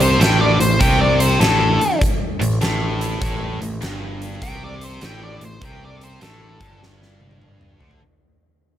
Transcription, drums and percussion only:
0.00 closed hi-hat medium
0.21 snare loud
0.21 closed hi-hat medium
0.61 closed hi-hat medium
0.81 kick loud
0.81 closed hi-hat medium
1.20 closed hi-hat medium
1.41 snare loud
1.41 closed hi-hat medium
1.81 closed hi-hat medium
2.01 kick loud
2.01 closed hi-hat medium
2.42 closed hi-hat medium
2.61 snare loud
2.61 closed hi-hat medium
3.01 closed hi-hat medium
3.22 kick loud
3.22 closed hi-hat medium
3.62 closed hi-hat medium
3.82 snare medium
3.82 closed hi-hat medium
4.22 closed hi-hat medium
4.42 kick loud
4.42 closed hi-hat loud
4.81 closed hi-hat medium
5.01 snare loud
5.01 closed hi-hat medium
5.41 closed hi-hat medium
5.62 kick loud
5.62 closed hi-hat medium
6.01 closed hi-hat medium
6.21 snare medium
6.21 closed hi-hat medium
6.61 kick medium
6.61 closed hi-hat medium
6.83 snare medium
7.02 snare medium
7.21 high tom medium
7.31 high tom medium
7.42 mid tom medium
7.61 mid tom medium
7.81 floor tom medium
7.91 floor tom medium

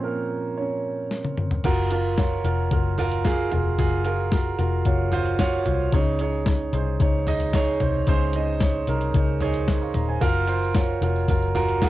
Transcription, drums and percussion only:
1.11 snare soft
1.25 high tom soft
1.38 mid tom medium
1.51 floor tom medium
1.64 kick medium
1.64 closed hi-hat medium
1.64 crash medium
1.91 closed hi-hat medium
2.18 kick medium
2.18 snare loud
2.18 closed hi-hat medium
2.45 closed hi-hat medium
2.71 kick medium
2.71 closed hi-hat medium
2.98 closed hi-hat medium
2.98 floor tom soft
3.12 closed hi-hat soft
3.25 kick medium
3.25 snare medium
3.25 closed hi-hat medium
3.52 closed hi-hat medium
3.52 floor tom medium
3.78 kick medium
3.78 closed hi-hat medium
4.04 closed hi-hat medium
4.32 kick medium
4.32 snare loud
4.32 closed hi-hat medium
4.59 closed hi-hat medium
4.85 kick loud
4.85 closed hi-hat medium
5.12 closed hi-hat medium
5.12 floor tom medium
5.26 closed hi-hat soft
5.39 kick medium
5.39 snare loud
5.39 closed hi-hat medium
5.66 closed hi-hat medium
5.66 floor tom medium
5.92 kick loud
5.92 closed hi-hat medium
6.19 closed hi-hat medium
6.46 kick loud
6.46 snare loud
6.46 closed hi-hat medium
6.73 closed hi-hat medium
7.00 kick loud
7.00 closed hi-hat medium
7.27 closed hi-hat medium
7.27 floor tom medium
7.40 closed hi-hat soft
7.53 kick medium
7.53 snare medium
7.53 closed hi-hat medium
7.80 closed hi-hat medium
7.80 floor tom medium
8.07 kick loud
8.07 closed hi-hat medium
8.33 closed hi-hat medium
8.60 kick loud
8.60 snare loud
8.60 closed hi-hat medium
8.87 closed hi-hat medium
9.01 closed hi-hat soft
9.14 kick loud
9.14 closed hi-hat medium
9.41 closed hi-hat medium
9.41 floor tom medium
9.54 closed hi-hat soft
9.68 kick medium
9.68 snare loud
9.68 closed hi-hat medium
9.94 closed hi-hat medium
9.94 floor tom medium
10.21 kick loud
10.21 closed hi-hat medium
10.21 tambourine soft
10.47 closed hi-hat medium
10.47 tambourine soft
10.62 tambourine soft
10.75 kick loud
10.75 snare loud
10.75 closed hi-hat medium
10.75 tambourine medium
11.02 closed hi-hat medium
11.02 tambourine soft
11.16 tambourine soft
11.28 kick medium
11.28 closed hi-hat medium
11.28 tambourine medium
11.42 tambourine soft
11.55 closed hi-hat medium
11.55 floor tom medium
11.55 tambourine soft
11.68 closed hi-hat soft
11.82 kick medium
11.82 snare loud
11.82 closed hi-hat medium
11.82 tambourine medium

